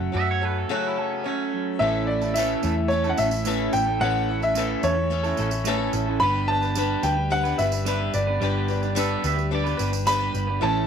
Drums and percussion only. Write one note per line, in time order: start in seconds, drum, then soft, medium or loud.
2.21 tambourine soft
2.36 tambourine loud
2.63 tambourine medium
2.90 tambourine soft
3.04 tambourine soft
3.17 tambourine medium
3.31 tambourine medium
3.45 tambourine medium
3.73 tambourine medium
4.42 tambourine soft
4.55 tambourine medium
4.83 tambourine medium
5.11 tambourine soft
5.24 tambourine soft
5.37 tambourine medium
5.51 tambourine medium
5.65 tambourine medium
5.93 tambourine medium
6.63 tambourine soft
6.75 tambourine medium
7.03 tambourine medium
7.31 tambourine soft
7.45 tambourine soft
7.59 tambourine medium
7.72 tambourine medium
7.86 tambourine medium
8.14 tambourine medium
8.41 tambourine soft
8.68 tambourine soft
8.83 tambourine soft
8.96 tambourine loud
9.24 tambourine medium
9.39 tambourine soft
9.66 tambourine soft
9.79 tambourine medium
9.93 tambourine medium
10.07 tambourine medium
10.20 tambourine soft
10.35 tambourine medium